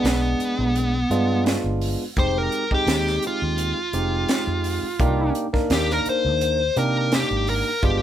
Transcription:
0.00 0.34 B1 medium
0.00 0.95 G#3 medium
0.00 0.95 B3 medium
0.00 0.95 D4 medium
0.00 0.95 G#4 medium
0.05 1.43 B3 medium
0.05 snare loud
0.05 closed hi-hat medium
0.40 closed hi-hat medium
0.59 1.03 B1 medium
0.76 closed hi-hat medium
1.10 1.57 G2 medium
1.10 2.03 G#3 medium
1.10 2.03 B3 medium
1.10 2.03 D4 medium
1.10 2.03 F4 medium
1.10 closed hi-hat medium
1.46 snare loud
1.46 closed hi-hat medium
1.64 1.95 G1 medium
1.81 open hi-hat medium
2.17 2.47 F1 medium
2.17 2.64 G#3 medium
2.17 2.64 C4 medium
2.17 2.64 D#4 medium
2.17 2.64 G4 medium
2.17 2.38 C5 medium
2.17 kick loud
2.17 closed hi-hat medium
2.38 2.71 A#4 medium
2.52 closed hi-hat medium
2.71 3.78 G#3 medium
2.71 3.78 C4 medium
2.71 3.78 D#4 medium
2.71 3.78 G4 medium
2.71 3.23 G4 medium
2.71 kick medium
2.87 3.17 D#2 medium
2.87 snare loud
2.87 closed hi-hat medium
3.07 snare soft
3.22 closed hi-hat medium
3.27 5.33 F4 medium
3.42 3.72 D#2 medium
3.58 closed hi-hat medium
3.93 4.24 F1 medium
3.93 4.86 G#3 medium
3.93 4.86 C4 medium
3.93 4.86 D#4 medium
3.93 4.86 G4 medium
3.93 closed hi-hat medium
4.29 snare loud
4.29 closed hi-hat medium
4.47 4.78 F2 medium
4.64 open hi-hat medium
4.83 muted fingered electric bass stroke soft
4.99 5.30 C2 medium
4.99 5.46 A#3 medium
4.99 5.46 D4 medium
4.99 5.46 D#4 medium
4.99 5.46 G4 medium
4.99 kick loud
4.99 closed hi-hat medium
5.35 closed hi-hat medium
5.53 6.61 A#3 medium
5.53 6.60 D4 medium
5.53 6.60 D#4 medium
5.53 6.60 A#4 medium
5.53 kick medium
5.53 snare soft
5.70 6.00 D#2 medium
5.70 5.92 G4 medium
5.70 snare loud
5.70 closed hi-hat medium
5.90 6.07 A#4 medium
5.90 snare soft
6.06 6.76 C5 loud
6.06 muted fingered electric bass stroke soft
6.06 closed hi-hat medium
6.25 6.69 D#2 medium
6.41 closed hi-hat medium
6.76 7.23 C3 medium
6.76 7.69 A#3 medium
6.76 7.69 D4 medium
6.76 7.69 D#4 medium
6.76 7.69 G4 medium
6.76 7.12 A#4 medium
6.76 closed hi-hat medium
7.12 7.48 G4 medium
7.12 snare loud
7.12 closed hi-hat medium
7.31 7.61 G#1 medium
7.47 7.83 A#4 medium
7.47 open hi-hat medium
7.83 8.02 G1 medium
7.83 8.02 G#3 medium
7.83 8.02 B3 medium
7.83 8.02 D4 medium
7.83 8.02 F4 medium
7.83 8.02 G4 loud
7.83 kick loud
7.83 closed hi-hat medium

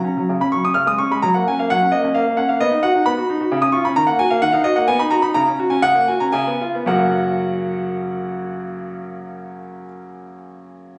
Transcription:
0.00 0.36 A#5 medium
0.04 0.17 C#4 soft
0.17 0.29 F#3 soft
0.29 0.40 C#3 soft
0.41 0.53 C#4 soft
0.41 0.53 B5 medium
0.52 0.65 F#3 soft
0.52 0.64 C#6 medium
0.64 0.76 C#4 soft
0.64 0.76 D#6 medium
0.74 0.87 C#3 medium
0.74 0.87 F6 medium
0.87 1.00 G#3 soft
0.87 0.99 D#6 medium
0.98 1.12 C#4 soft
0.98 1.11 C#6 medium
1.11 1.23 G#3 soft
1.11 1.23 B5 medium
1.22 1.34 F#3 medium
1.22 1.34 A#5 medium
1.34 1.47 A#3 soft
1.34 1.46 F#5 medium
1.48 1.60 C#4 soft
1.48 1.59 G#5 medium
1.59 1.71 A#3 soft
1.59 1.70 F5 medium
1.70 1.82 F#3 medium
1.70 1.91 F#5 medium
1.82 1.94 C#4 soft
1.92 2.05 A#3 soft
1.92 2.13 D#5 medium
2.04 2.16 C#4 medium
2.15 2.26 A#3 medium
2.15 2.38 F5 medium
2.27 2.39 A#3 soft
2.37 2.50 C#4 medium
2.37 2.49 F#5 medium
2.49 2.61 A#3 soft
2.49 2.61 F5 medium
2.60 2.72 B3 medium
2.60 2.84 D#5 medium
2.71 2.84 D#4 soft
2.83 2.96 F#4 medium
2.83 3.06 F#5 medium
2.95 3.07 D#4 soft
3.06 3.17 B3 medium
3.06 3.63 B5 loud
3.18 3.30 F#4 medium
3.29 3.41 D#4 medium
3.41 3.52 F#4 medium
3.52 3.63 C#3 medium
3.62 3.75 C#4 medium
3.62 3.74 D#6 medium
3.72 3.86 F4 medium
3.72 3.85 C#6 medium
3.85 3.97 C#4 medium
3.85 3.96 B5 medium
3.96 4.08 D#3 medium
3.96 4.08 A#5 loud
4.07 4.20 A#3 soft
4.07 4.19 F#5 medium
4.19 4.31 F#4 medium
4.19 4.31 G#5 loud
4.30 4.43 A#3 medium
4.30 4.42 F5 medium
4.42 4.53 D#3 medium
4.42 4.53 F#5 loud
4.52 4.66 D#4 medium
4.52 4.65 F5 medium
4.64 4.77 F#4 medium
4.64 4.76 D#5 loud
4.76 4.88 A#3 medium
4.76 4.88 F#5 medium
4.88 5.00 B3 medium
4.88 5.00 G#5 loud
4.99 5.13 D#4 medium
4.99 5.11 B5 medium
5.11 5.24 F#4 medium
5.11 5.23 A#5 medium
5.22 5.35 D#4 medium
5.22 5.35 B5 medium
5.34 5.47 C#3 medium
5.34 5.57 A#5 loud
5.47 5.60 C#4 medium
5.59 5.73 F#4 medium
5.70 5.85 C#4 medium
5.70 5.84 G#5 medium
5.82 5.96 C#3 medium
5.82 6.06 F#5 loud
5.95 6.10 A#3 medium
6.08 6.23 F#4 medium
6.08 6.22 G#5 medium
6.20 6.35 C#4 medium
6.20 6.34 A#5 medium
6.32 6.47 C#3 medium
6.32 6.65 G#5 loud
6.47 6.62 B3 medium
6.61 6.76 F4 medium
6.75 6.88 B3 medium
6.86 9.84 F#2 medium
6.86 9.85 C#3 medium
6.86 9.85 A#3 medium
6.86 9.85 C#4 medium
6.86 9.86 F#4 medium
6.86 9.86 A#4 medium
6.86 9.85 F#5 medium

